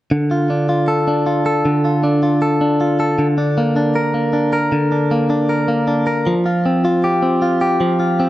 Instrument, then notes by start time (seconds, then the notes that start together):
clean electric guitar
0.11 D3
0.31 F4
0.50 D4
0.69 F4
0.88 A4
1.08 D4
1.26 F4
1.46 A4
1.65 D3
1.85 F4
2.03 D4
2.23 F4
2.42 A4
2.61 D4
2.81 F4
3.00 A4
3.19 D3
3.38 D4
3.58 A#3
3.76 D4
3.95 A#4
4.14 A#3
4.33 D4
4.53 A#4
4.72 D3
4.92 D4
5.11 A#3
5.30 D4
5.49 A#4
5.68 A#3
5.87 D4
6.07 A#4
6.27 F3
6.46 F4
6.66 C4
6.85 F4
7.04 G4
7.22 C4
7.42 F4
7.61 G4
7.81 F3
8.00 F4
8.20 C4